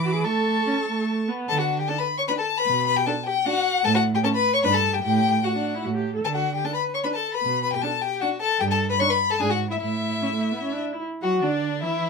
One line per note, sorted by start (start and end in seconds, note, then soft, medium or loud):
0.00 0.26 E3 medium
0.00 0.26 B5 medium
0.00 0.26 D6 medium
0.04 0.14 F#4 medium
0.14 0.26 G#4 medium
0.24 0.62 A3 medium
0.24 1.07 A4 medium
0.24 1.28 A5 medium
0.24 1.28 C#6 medium
0.66 0.74 C#4 medium
0.87 1.30 A3 medium
1.28 1.49 B3 medium
1.48 1.81 D3 medium
1.48 1.60 A4 medium
1.48 1.58 A5 medium
1.58 1.81 F#4 medium
1.58 1.78 F#5 medium
1.79 1.90 G4 medium
1.79 1.89 G5 medium
1.88 1.97 D4 medium
1.88 1.98 A4 medium
1.88 2.00 A5 medium
1.98 2.07 B4 medium
1.98 2.18 B5 medium
2.18 2.22 C#5 medium
2.18 2.22 C#6 medium
2.28 2.36 D4 medium
2.28 2.38 B4 medium
2.28 2.32 B5 medium
2.38 2.46 A4 medium
2.38 2.59 A5 medium
2.57 2.86 B4 medium
2.57 2.86 B5 medium
2.67 3.00 B2 medium
2.87 2.97 B4 medium
2.87 2.98 B5 medium
2.96 3.01 G4 medium
2.96 3.08 G5 medium
3.06 3.14 D4 medium
3.06 3.15 A4 medium
3.06 3.25 A5 medium
3.26 3.34 G4 medium
3.26 3.47 G5 medium
3.46 3.54 D4 medium
3.46 3.84 F#4 medium
3.46 3.86 F#5 medium
3.85 4.17 A2 medium
3.85 3.89 A4 medium
3.85 3.94 A5 loud
3.94 4.02 F#4 medium
3.94 4.03 F#5 medium
4.15 4.19 G4 medium
4.15 4.19 G5 medium
4.24 4.32 C#4 medium
4.24 4.28 A4 medium
4.24 4.28 A5 medium
4.34 4.56 B4 medium
4.34 4.53 B5 medium
4.54 4.65 C#5 medium
4.54 4.58 C#6 loud
4.63 4.97 G2 medium
4.63 4.71 D4 medium
4.63 4.73 B4 medium
4.63 4.76 B5 medium
4.73 4.95 A4 medium
4.73 4.96 A5 medium
4.93 5.02 G4 medium
4.93 5.03 G5 medium
5.03 5.37 A2 medium
5.03 5.43 G4 medium
5.03 5.45 G5 medium
5.44 5.84 F#4 soft
5.44 5.48 F#4 medium
5.44 5.84 F#5 medium
5.55 5.76 D4 medium
5.75 5.85 E4 medium
5.85 6.18 A2 medium
5.85 5.89 F#4 medium
5.95 6.15 G4 medium
6.15 6.25 A4 medium
6.25 6.58 D3 medium
6.25 6.29 A4 medium
6.25 6.29 A5 medium
6.35 6.54 F#4 medium
6.35 6.54 F#5 medium
6.55 6.66 G4 medium
6.55 6.66 G5 medium
6.64 6.72 D4 soft
6.64 6.74 A4 medium
6.64 6.74 A5 medium
6.74 6.96 B4 medium
6.74 6.82 B5 medium
6.94 7.06 C#5 medium
6.94 6.98 C#6 medium
7.04 7.12 D4 soft
7.04 7.17 B4 medium
7.04 7.08 B5 medium
7.14 7.36 A4 medium
7.14 7.33 A5 medium
7.34 7.63 B4 medium
7.34 7.62 B5 medium
7.43 7.76 B2 medium
7.63 7.76 B4 medium
7.63 7.72 B5 medium
7.73 7.86 G4 medium
7.73 7.83 G5 medium
7.82 7.90 D4 medium
7.82 8.03 A4 medium
7.82 8.03 A5 medium
8.01 8.23 G4 medium
8.01 8.20 G5 medium
8.21 8.30 D4 medium
8.21 8.41 F#4 medium
8.21 8.29 F#5 medium
8.41 8.62 A4 medium
8.41 8.60 A5 medium
8.60 8.93 G2 medium
8.60 8.69 G4 medium
8.60 8.64 G5 medium
8.70 8.89 A4 medium
8.70 8.79 A5 medium
8.90 8.94 B4 medium
8.90 9.01 B5 medium
8.99 9.08 D4 medium
8.99 9.03 C#5 medium
8.99 9.12 C#6 loud
9.09 9.17 B4 medium
9.09 9.32 B5 medium
9.30 9.39 A4 medium
9.30 9.42 A5 medium
9.40 9.74 G#2 medium
9.40 9.48 D4 medium
9.40 9.51 G#4 medium
9.40 9.50 G#5 medium
9.50 9.70 F#4 medium
9.50 9.58 F#5 medium
9.70 9.80 E4 medium
9.70 9.75 E5 medium
9.81 10.15 A2 medium
9.81 10.81 E4 medium
9.81 10.81 E5 medium
10.22 10.26 C#4 medium
10.32 10.53 A3 soft
10.52 10.61 B3 soft
10.62 10.74 C#4 soft
10.72 10.94 D4 soft
10.93 11.03 E4 soft
11.22 11.44 F#3 medium
11.22 11.44 F#4 medium
11.22 11.31 F#4 medium
11.22 11.41 F#5 soft
11.42 11.84 D3 medium
11.42 11.84 D4 medium
11.42 11.81 D4 medium
11.42 11.82 D5 soft
11.82 12.10 E3 medium
11.82 12.10 E4 medium
11.82 12.10 E5 medium